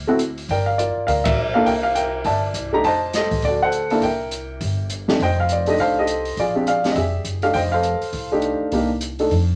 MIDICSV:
0, 0, Header, 1, 5, 480
1, 0, Start_track
1, 0, Key_signature, -1, "major"
1, 0, Tempo, 294262
1, 796, Time_signature, 4, 2, 24, 8
1, 15586, End_track
2, 0, Start_track
2, 0, Title_t, "Grand piano"
2, 0, Program_c, 0, 0
2, 121, Note_on_c, 0, 57, 75
2, 132, Note_on_c, 0, 60, 72
2, 135, Note_on_c, 0, 64, 72
2, 143, Note_on_c, 0, 66, 87
2, 295, Note_off_c, 0, 57, 0
2, 300, Note_off_c, 0, 60, 0
2, 302, Note_off_c, 0, 64, 0
2, 306, Note_off_c, 0, 66, 0
2, 826, Note_on_c, 0, 79, 84
2, 832, Note_on_c, 0, 74, 64
2, 847, Note_on_c, 0, 70, 57
2, 1080, Note_on_c, 0, 77, 75
2, 1082, Note_off_c, 0, 79, 0
2, 1251, Note_off_c, 0, 74, 0
2, 1260, Note_off_c, 0, 77, 0
2, 1275, Note_on_c, 0, 74, 79
2, 1276, Note_off_c, 0, 70, 0
2, 1291, Note_on_c, 0, 65, 55
2, 1301, Note_on_c, 0, 70, 49
2, 1722, Note_off_c, 0, 74, 0
2, 1742, Note_on_c, 0, 77, 85
2, 1749, Note_off_c, 0, 70, 0
2, 1762, Note_on_c, 0, 74, 58
2, 1773, Note_on_c, 0, 70, 61
2, 1824, Note_off_c, 0, 77, 0
2, 2024, Note_off_c, 0, 70, 0
2, 2024, Note_on_c, 0, 76, 102
2, 2048, Note_on_c, 0, 70, 68
2, 2179, Note_off_c, 0, 65, 0
2, 2512, Note_on_c, 0, 77, 89
2, 2530, Note_off_c, 0, 76, 0
2, 2532, Note_on_c, 0, 58, 79
2, 2537, Note_on_c, 0, 64, 67
2, 2541, Note_on_c, 0, 62, 66
2, 2543, Note_on_c, 0, 69, 81
2, 2654, Note_off_c, 0, 74, 0
2, 2671, Note_off_c, 0, 70, 0
2, 2701, Note_off_c, 0, 58, 0
2, 2704, Note_off_c, 0, 64, 0
2, 2706, Note_off_c, 0, 62, 0
2, 2706, Note_off_c, 0, 69, 0
2, 2708, Note_on_c, 0, 79, 96
2, 2716, Note_off_c, 0, 77, 0
2, 2723, Note_on_c, 0, 70, 65
2, 2728, Note_on_c, 0, 76, 64
2, 2790, Note_off_c, 0, 79, 0
2, 2988, Note_on_c, 0, 77, 92
2, 3185, Note_on_c, 0, 79, 87
2, 3190, Note_off_c, 0, 70, 0
2, 3192, Note_off_c, 0, 76, 0
2, 3194, Note_off_c, 0, 77, 0
2, 3214, Note_on_c, 0, 70, 66
2, 3217, Note_on_c, 0, 76, 57
2, 3637, Note_off_c, 0, 79, 0
2, 3678, Note_on_c, 0, 81, 92
2, 3687, Note_off_c, 0, 76, 0
2, 3698, Note_on_c, 0, 74, 67
2, 3712, Note_on_c, 0, 76, 74
2, 4101, Note_off_c, 0, 70, 0
2, 4125, Note_off_c, 0, 81, 0
2, 4447, Note_on_c, 0, 57, 68
2, 4452, Note_on_c, 0, 62, 62
2, 4461, Note_on_c, 0, 63, 63
2, 4464, Note_on_c, 0, 67, 80
2, 4472, Note_on_c, 0, 82, 90
2, 4583, Note_off_c, 0, 74, 0
2, 4590, Note_off_c, 0, 76, 0
2, 4619, Note_off_c, 0, 57, 0
2, 4621, Note_off_c, 0, 62, 0
2, 4626, Note_off_c, 0, 63, 0
2, 4628, Note_off_c, 0, 67, 0
2, 4638, Note_off_c, 0, 82, 0
2, 4643, Note_on_c, 0, 81, 107
2, 4672, Note_on_c, 0, 72, 76
2, 4680, Note_on_c, 0, 75, 72
2, 5088, Note_off_c, 0, 81, 0
2, 5113, Note_off_c, 0, 75, 0
2, 5137, Note_on_c, 0, 75, 85
2, 5165, Note_on_c, 0, 67, 58
2, 5171, Note_on_c, 0, 69, 57
2, 5550, Note_off_c, 0, 72, 0
2, 5575, Note_off_c, 0, 75, 0
2, 5590, Note_off_c, 0, 67, 0
2, 5593, Note_off_c, 0, 69, 0
2, 5623, Note_on_c, 0, 74, 87
2, 5664, Note_on_c, 0, 69, 58
2, 5670, Note_on_c, 0, 66, 58
2, 5909, Note_off_c, 0, 74, 0
2, 5913, Note_on_c, 0, 78, 105
2, 5925, Note_off_c, 0, 69, 0
2, 5950, Note_on_c, 0, 69, 66
2, 5952, Note_on_c, 0, 72, 68
2, 6349, Note_off_c, 0, 78, 0
2, 6371, Note_off_c, 0, 69, 0
2, 6380, Note_on_c, 0, 58, 70
2, 6381, Note_on_c, 0, 81, 84
2, 6389, Note_on_c, 0, 62, 65
2, 6392, Note_on_c, 0, 64, 67
2, 6395, Note_on_c, 0, 69, 77
2, 6530, Note_off_c, 0, 66, 0
2, 6546, Note_off_c, 0, 58, 0
2, 6546, Note_off_c, 0, 72, 0
2, 6551, Note_off_c, 0, 62, 0
2, 6552, Note_off_c, 0, 64, 0
2, 6553, Note_off_c, 0, 81, 0
2, 6554, Note_off_c, 0, 69, 0
2, 6579, Note_on_c, 0, 79, 86
2, 6607, Note_on_c, 0, 70, 61
2, 6608, Note_on_c, 0, 76, 62
2, 7944, Note_off_c, 0, 79, 0
2, 7958, Note_off_c, 0, 70, 0
2, 7959, Note_off_c, 0, 76, 0
2, 8288, Note_on_c, 0, 41, 68
2, 8295, Note_on_c, 0, 62, 66
2, 8301, Note_on_c, 0, 57, 57
2, 8306, Note_on_c, 0, 67, 73
2, 8308, Note_on_c, 0, 63, 63
2, 8460, Note_off_c, 0, 41, 0
2, 8463, Note_off_c, 0, 62, 0
2, 8466, Note_off_c, 0, 57, 0
2, 8469, Note_off_c, 0, 67, 0
2, 8470, Note_off_c, 0, 63, 0
2, 8522, Note_on_c, 0, 72, 70
2, 8524, Note_on_c, 0, 75, 72
2, 8534, Note_on_c, 0, 79, 98
2, 8778, Note_off_c, 0, 79, 0
2, 8808, Note_on_c, 0, 77, 83
2, 8984, Note_off_c, 0, 77, 0
2, 9012, Note_on_c, 0, 74, 75
2, 9254, Note_on_c, 0, 57, 66
2, 9256, Note_on_c, 0, 62, 62
2, 9260, Note_on_c, 0, 63, 61
2, 9266, Note_off_c, 0, 75, 0
2, 9267, Note_on_c, 0, 67, 71
2, 9283, Note_off_c, 0, 74, 0
2, 9290, Note_on_c, 0, 75, 81
2, 9396, Note_off_c, 0, 72, 0
2, 9461, Note_on_c, 0, 77, 93
2, 9466, Note_off_c, 0, 75, 0
2, 9482, Note_on_c, 0, 69, 64
2, 9482, Note_on_c, 0, 72, 72
2, 9746, Note_off_c, 0, 69, 0
2, 9749, Note_off_c, 0, 77, 0
2, 9753, Note_off_c, 0, 67, 0
2, 9767, Note_on_c, 0, 75, 85
2, 9771, Note_on_c, 0, 69, 60
2, 9777, Note_on_c, 0, 67, 66
2, 9884, Note_off_c, 0, 57, 0
2, 9885, Note_off_c, 0, 62, 0
2, 9887, Note_off_c, 0, 63, 0
2, 10356, Note_off_c, 0, 72, 0
2, 10375, Note_off_c, 0, 69, 0
2, 10379, Note_off_c, 0, 67, 0
2, 10433, Note_on_c, 0, 74, 88
2, 10438, Note_off_c, 0, 75, 0
2, 10443, Note_on_c, 0, 65, 63
2, 10445, Note_on_c, 0, 68, 62
2, 10682, Note_on_c, 0, 56, 65
2, 10690, Note_on_c, 0, 62, 57
2, 10692, Note_on_c, 0, 60, 53
2, 10697, Note_on_c, 0, 67, 71
2, 10857, Note_off_c, 0, 56, 0
2, 10861, Note_off_c, 0, 62, 0
2, 10862, Note_off_c, 0, 60, 0
2, 10864, Note_off_c, 0, 74, 0
2, 10865, Note_off_c, 0, 67, 0
2, 10892, Note_off_c, 0, 68, 0
2, 10894, Note_on_c, 0, 77, 94
2, 10917, Note_on_c, 0, 68, 57
2, 10922, Note_on_c, 0, 74, 62
2, 11157, Note_on_c, 0, 56, 62
2, 11168, Note_on_c, 0, 67, 66
2, 11169, Note_on_c, 0, 60, 54
2, 11171, Note_on_c, 0, 62, 57
2, 11249, Note_off_c, 0, 77, 0
2, 11270, Note_on_c, 0, 75, 64
2, 11316, Note_off_c, 0, 65, 0
2, 11334, Note_off_c, 0, 56, 0
2, 11340, Note_off_c, 0, 60, 0
2, 11340, Note_off_c, 0, 67, 0
2, 11341, Note_off_c, 0, 62, 0
2, 11352, Note_on_c, 0, 76, 92
2, 11355, Note_off_c, 0, 68, 0
2, 11360, Note_off_c, 0, 75, 0
2, 11378, Note_on_c, 0, 67, 65
2, 11379, Note_on_c, 0, 68, 60
2, 11795, Note_off_c, 0, 74, 0
2, 11802, Note_off_c, 0, 76, 0
2, 12107, Note_off_c, 0, 67, 0
2, 12118, Note_on_c, 0, 57, 57
2, 12123, Note_on_c, 0, 77, 88
2, 12128, Note_on_c, 0, 62, 58
2, 12131, Note_on_c, 0, 67, 67
2, 12132, Note_on_c, 0, 63, 56
2, 12264, Note_off_c, 0, 68, 0
2, 12295, Note_off_c, 0, 57, 0
2, 12296, Note_on_c, 0, 79, 100
2, 12300, Note_off_c, 0, 62, 0
2, 12302, Note_off_c, 0, 63, 0
2, 12302, Note_off_c, 0, 67, 0
2, 12322, Note_off_c, 0, 77, 0
2, 12327, Note_on_c, 0, 72, 67
2, 12343, Note_on_c, 0, 75, 66
2, 12377, Note_off_c, 0, 79, 0
2, 12592, Note_on_c, 0, 77, 89
2, 12602, Note_off_c, 0, 72, 0
2, 12627, Note_on_c, 0, 72, 61
2, 12632, Note_on_c, 0, 69, 62
2, 13226, Note_off_c, 0, 75, 0
2, 13568, Note_on_c, 0, 57, 66
2, 13575, Note_on_c, 0, 62, 67
2, 13579, Note_on_c, 0, 63, 64
2, 13585, Note_on_c, 0, 67, 75
2, 14200, Note_off_c, 0, 57, 0
2, 14204, Note_off_c, 0, 62, 0
2, 14206, Note_off_c, 0, 63, 0
2, 14209, Note_off_c, 0, 67, 0
2, 14237, Note_on_c, 0, 58, 64
2, 14245, Note_on_c, 0, 62, 58
2, 14249, Note_on_c, 0, 63, 58
2, 14257, Note_on_c, 0, 67, 67
2, 14455, Note_off_c, 0, 77, 0
2, 14472, Note_off_c, 0, 72, 0
2, 14475, Note_off_c, 0, 69, 0
2, 14499, Note_off_c, 0, 58, 0
2, 14503, Note_off_c, 0, 62, 0
2, 14505, Note_off_c, 0, 63, 0
2, 14509, Note_off_c, 0, 67, 0
2, 15001, Note_on_c, 0, 62, 54
2, 15004, Note_on_c, 0, 57, 59
2, 15016, Note_on_c, 0, 69, 66
2, 15018, Note_on_c, 0, 63, 57
2, 15176, Note_off_c, 0, 62, 0
2, 15178, Note_off_c, 0, 57, 0
2, 15184, Note_off_c, 0, 69, 0
2, 15185, Note_off_c, 0, 63, 0
2, 15586, End_track
3, 0, Start_track
3, 0, Title_t, "Upright bass"
3, 0, Program_c, 1, 32
3, 0, Note_on_c, 1, 38, 81
3, 742, Note_off_c, 1, 38, 0
3, 790, Note_on_c, 1, 31, 80
3, 1509, Note_off_c, 1, 31, 0
3, 1758, Note_on_c, 1, 38, 89
3, 2204, Note_off_c, 1, 38, 0
3, 2223, Note_on_c, 1, 35, 79
3, 2676, Note_off_c, 1, 35, 0
3, 2712, Note_on_c, 1, 36, 82
3, 3627, Note_off_c, 1, 36, 0
3, 3664, Note_on_c, 1, 31, 88
3, 4117, Note_off_c, 1, 31, 0
3, 4142, Note_on_c, 1, 36, 81
3, 4597, Note_off_c, 1, 36, 0
3, 4630, Note_on_c, 1, 29, 81
3, 5547, Note_off_c, 1, 29, 0
3, 5591, Note_on_c, 1, 38, 93
3, 6507, Note_off_c, 1, 38, 0
3, 6557, Note_on_c, 1, 36, 80
3, 7471, Note_off_c, 1, 36, 0
3, 7514, Note_on_c, 1, 31, 90
3, 8429, Note_off_c, 1, 31, 0
3, 8471, Note_on_c, 1, 29, 87
3, 9387, Note_off_c, 1, 29, 0
3, 9431, Note_on_c, 1, 36, 86
3, 10347, Note_off_c, 1, 36, 0
3, 10389, Note_on_c, 1, 34, 78
3, 11306, Note_off_c, 1, 34, 0
3, 11344, Note_on_c, 1, 29, 78
3, 11797, Note_off_c, 1, 29, 0
3, 11812, Note_on_c, 1, 30, 76
3, 12271, Note_off_c, 1, 30, 0
3, 12306, Note_on_c, 1, 29, 83
3, 13028, Note_off_c, 1, 29, 0
3, 13255, Note_on_c, 1, 36, 86
3, 13982, Note_off_c, 1, 36, 0
3, 14224, Note_on_c, 1, 36, 79
3, 15143, Note_off_c, 1, 36, 0
3, 15183, Note_on_c, 1, 41, 87
3, 15586, Note_off_c, 1, 41, 0
3, 15586, End_track
4, 0, Start_track
4, 0, Title_t, "Muted upright bass strokes"
4, 1557, Note_on_c, 9, 29, 42
4, 1720, Note_off_c, 9, 29, 0
4, 13069, Note_on_c, 9, 29, 38
4, 13232, Note_off_c, 9, 29, 0
4, 14033, Note_on_c, 9, 29, 36
4, 14196, Note_off_c, 9, 29, 0
4, 15586, End_track
5, 0, Start_track
5, 0, Title_t, "Drums"
5, 311, Note_on_c, 9, 42, 52
5, 475, Note_off_c, 9, 42, 0
5, 613, Note_on_c, 9, 46, 37
5, 776, Note_off_c, 9, 46, 0
5, 800, Note_on_c, 9, 36, 33
5, 802, Note_on_c, 9, 46, 46
5, 963, Note_off_c, 9, 36, 0
5, 965, Note_off_c, 9, 46, 0
5, 1289, Note_on_c, 9, 42, 56
5, 1452, Note_off_c, 9, 42, 0
5, 1762, Note_on_c, 9, 46, 47
5, 1763, Note_on_c, 9, 36, 31
5, 1925, Note_off_c, 9, 46, 0
5, 1926, Note_off_c, 9, 36, 0
5, 2044, Note_on_c, 9, 51, 73
5, 2049, Note_on_c, 9, 36, 85
5, 2207, Note_off_c, 9, 51, 0
5, 2212, Note_off_c, 9, 36, 0
5, 2715, Note_on_c, 9, 46, 46
5, 2717, Note_on_c, 9, 36, 31
5, 2878, Note_off_c, 9, 46, 0
5, 2880, Note_off_c, 9, 36, 0
5, 3189, Note_on_c, 9, 42, 56
5, 3352, Note_off_c, 9, 42, 0
5, 3661, Note_on_c, 9, 46, 41
5, 3669, Note_on_c, 9, 36, 32
5, 3824, Note_off_c, 9, 46, 0
5, 3832, Note_off_c, 9, 36, 0
5, 4146, Note_on_c, 9, 42, 49
5, 4309, Note_off_c, 9, 42, 0
5, 4634, Note_on_c, 9, 36, 32
5, 4634, Note_on_c, 9, 46, 42
5, 4797, Note_off_c, 9, 36, 0
5, 4797, Note_off_c, 9, 46, 0
5, 5113, Note_on_c, 9, 42, 57
5, 5121, Note_on_c, 9, 38, 41
5, 5276, Note_off_c, 9, 42, 0
5, 5284, Note_off_c, 9, 38, 0
5, 5401, Note_on_c, 9, 46, 42
5, 5405, Note_on_c, 9, 36, 57
5, 5564, Note_off_c, 9, 46, 0
5, 5568, Note_off_c, 9, 36, 0
5, 5581, Note_on_c, 9, 46, 42
5, 5595, Note_on_c, 9, 36, 34
5, 5744, Note_off_c, 9, 46, 0
5, 5758, Note_off_c, 9, 36, 0
5, 6068, Note_on_c, 9, 42, 50
5, 6231, Note_off_c, 9, 42, 0
5, 6366, Note_on_c, 9, 46, 40
5, 6529, Note_off_c, 9, 46, 0
5, 6552, Note_on_c, 9, 46, 47
5, 6560, Note_on_c, 9, 36, 33
5, 6715, Note_off_c, 9, 46, 0
5, 6723, Note_off_c, 9, 36, 0
5, 7035, Note_on_c, 9, 42, 52
5, 7198, Note_off_c, 9, 42, 0
5, 7515, Note_on_c, 9, 46, 47
5, 7516, Note_on_c, 9, 36, 34
5, 7678, Note_off_c, 9, 46, 0
5, 7679, Note_off_c, 9, 36, 0
5, 7987, Note_on_c, 9, 42, 52
5, 8150, Note_off_c, 9, 42, 0
5, 8297, Note_on_c, 9, 38, 46
5, 8461, Note_off_c, 9, 38, 0
5, 8478, Note_on_c, 9, 36, 31
5, 8479, Note_on_c, 9, 46, 41
5, 8641, Note_off_c, 9, 36, 0
5, 8642, Note_off_c, 9, 46, 0
5, 8953, Note_on_c, 9, 42, 55
5, 9116, Note_off_c, 9, 42, 0
5, 9238, Note_on_c, 9, 46, 39
5, 9401, Note_off_c, 9, 46, 0
5, 9433, Note_on_c, 9, 46, 40
5, 9435, Note_on_c, 9, 36, 31
5, 9596, Note_off_c, 9, 46, 0
5, 9598, Note_off_c, 9, 36, 0
5, 9905, Note_on_c, 9, 42, 50
5, 10068, Note_off_c, 9, 42, 0
5, 10198, Note_on_c, 9, 46, 37
5, 10361, Note_off_c, 9, 46, 0
5, 10393, Note_on_c, 9, 46, 47
5, 10395, Note_on_c, 9, 36, 32
5, 10556, Note_off_c, 9, 46, 0
5, 10558, Note_off_c, 9, 36, 0
5, 10878, Note_on_c, 9, 42, 52
5, 11041, Note_off_c, 9, 42, 0
5, 11159, Note_on_c, 9, 46, 40
5, 11167, Note_on_c, 9, 38, 35
5, 11322, Note_off_c, 9, 46, 0
5, 11330, Note_off_c, 9, 38, 0
5, 11348, Note_on_c, 9, 46, 41
5, 11354, Note_on_c, 9, 36, 30
5, 11511, Note_off_c, 9, 46, 0
5, 11517, Note_off_c, 9, 36, 0
5, 11822, Note_on_c, 9, 42, 53
5, 11985, Note_off_c, 9, 42, 0
5, 12106, Note_on_c, 9, 46, 36
5, 12269, Note_off_c, 9, 46, 0
5, 12295, Note_on_c, 9, 46, 44
5, 12307, Note_on_c, 9, 36, 34
5, 12458, Note_off_c, 9, 46, 0
5, 12470, Note_off_c, 9, 36, 0
5, 12777, Note_on_c, 9, 42, 55
5, 12940, Note_off_c, 9, 42, 0
5, 13076, Note_on_c, 9, 46, 39
5, 13239, Note_off_c, 9, 46, 0
5, 13258, Note_on_c, 9, 46, 42
5, 13267, Note_on_c, 9, 36, 31
5, 13421, Note_off_c, 9, 46, 0
5, 13430, Note_off_c, 9, 36, 0
5, 13733, Note_on_c, 9, 42, 56
5, 13897, Note_off_c, 9, 42, 0
5, 14218, Note_on_c, 9, 46, 46
5, 14228, Note_on_c, 9, 36, 33
5, 14381, Note_off_c, 9, 46, 0
5, 14391, Note_off_c, 9, 36, 0
5, 14694, Note_on_c, 9, 42, 56
5, 14857, Note_off_c, 9, 42, 0
5, 14990, Note_on_c, 9, 46, 38
5, 15153, Note_off_c, 9, 46, 0
5, 15185, Note_on_c, 9, 46, 44
5, 15191, Note_on_c, 9, 36, 31
5, 15348, Note_off_c, 9, 46, 0
5, 15354, Note_off_c, 9, 36, 0
5, 15586, End_track
0, 0, End_of_file